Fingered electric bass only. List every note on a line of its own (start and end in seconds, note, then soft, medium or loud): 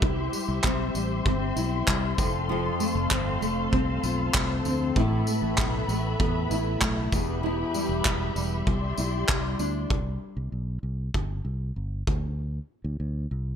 0.02 0.27 C2 medium
0.48 0.61 C2 medium
0.64 0.89 B1 medium
0.95 1.20 A1 medium
1.26 1.51 G1 medium
1.56 1.82 B1 medium
1.88 2.13 C2 medium
2.19 2.69 F1 medium
2.95 3.08 F1 loud
3.11 3.36 G1 medium
3.42 3.67 F1 medium
3.73 3.98 C2 medium
4.04 4.29 B1 medium
4.34 4.60 C2 loud
4.65 4.91 D2 medium
4.96 5.21 A1 medium
5.42 5.55 A1 medium
5.58 5.83 B1 medium
5.88 6.14 A1 medium
6.20 6.45 E2 medium
6.51 6.76 A1 loud
6.82 7.07 B1 medium
7.12 7.63 E1 loud
7.89 8.02 E1 medium
8.05 8.31 E1 medium
8.36 8.61 E1 medium
8.67 8.92 C2 loud
8.98 9.23 B1 medium
9.29 9.54 C2 medium
9.59 9.85 D2 medium
9.90 10.16 C2 medium
10.37 10.49 C2 medium
10.52 10.78 B1 medium
10.83 11.09 C2 medium
11.15 11.40 G1 medium
11.45 11.70 C2 medium
11.76 12.02 G1 medium
12.07 12.58 D2 medium
12.84 12.97 D2 medium
13.00 13.25 D2 medium
13.31 13.56 C2 medium